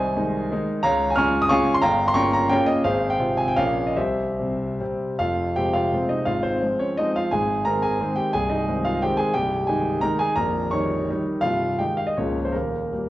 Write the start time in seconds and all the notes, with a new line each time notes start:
Already playing: C2 C5 D#5 G#5
0.16 D#3 G#3 D#4
0.51 D#3 G#3 D#4
0.83 C#2 C#5 F5 A#5
1.10 G#5
1.16 C#3 G#3 F4 G#5 C#6 F6
1.42 D#6
1.49 C#3 G#3 F4 F5 G#5 C#6
1.75 C6
1.82 G1 F5 G5 A#5
2.08 C6
2.14 C#3 A#3 F4 G5 A#5 C#6
2.33 A#5
2.49 C#3 A#3 F4 A#4 C#5 G5
2.66 D#5
2.84 G#1 G#4 C5 F5
3.10 G5
3.19 C3 C4 F4
3.37 G#5
3.48 G5
3.56 A#1 C#3 A#3 F4 A#4 C#5 F5
3.87 D#5
3.96 C2 G4 C5 E5
4.39 C3 G3 C4
4.80 C3 G3 C4
5.19 F1 F2 F4 F5
5.56 C3 G#3 C4 G4 G5
5.73 F4 F5
5.93 C3 G#3 C4
6.09 D#4 D#5
6.25 G#1 G#2 F4 F5
6.43 C4 C5
6.62 F3 G#3 C4
6.79 C#4 C#5
6.97 F3 G#3 C4 D#4 D#5
7.16 F4 F5
7.31 G#1 G#2 G#4 G#5
7.65 D#3 G#3 C4 A#4 A#5
7.82 G#4 G#5
8.00 D#3 G#3 C4
8.16 G4 G5
8.33 C1 C2 G#4 G#5
8.49 D#4 D#5
8.67 D#3 G#3 C4
8.84 F4 F5
9.02 D#3 G#3 C4 G4 G5
9.17 G#4 G#5
9.34 C1 C2 G4 G5
9.67 D#3 G#3 D#4 G#4 G#5
10.01 D#3 G#3 D#4 A#4 A#5
10.19 G#4 G#5
10.36 A#0 A#1 A#4 A#5
10.71 D#3 G3 D#4 C#5 C#6
11.10 D#3 G3 D#4
11.41 C1 C2 F4 F5
11.79 D#3 G#3 D#4 G4 G5
11.97 F5
12.07 D#5
12.17 C#1 C#2 F3 A#3 C#4 C#5
12.45 C5
12.52 D#1 D#2 A#3 A#4
12.92 G3 A#3